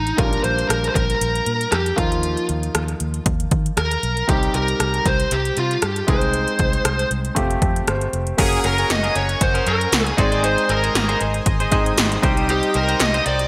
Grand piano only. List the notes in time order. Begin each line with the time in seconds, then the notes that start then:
0.17 G3 A#3 C#4 F4
0.25 D4
1.96 F3 A#3 D#4 F4
4.28 G3 C4 D#4 G4
6.07 G#3 C4 D#4 G#4
7.35 A3 C4 F4 G4
7.87 C5
8.37 A#3 C#4 F#4 G#4
10.17 G#3 C4 D#4 G#4
11.71 G#3 C4 D#4 G#4
12.22 G3 C4 D#4 G4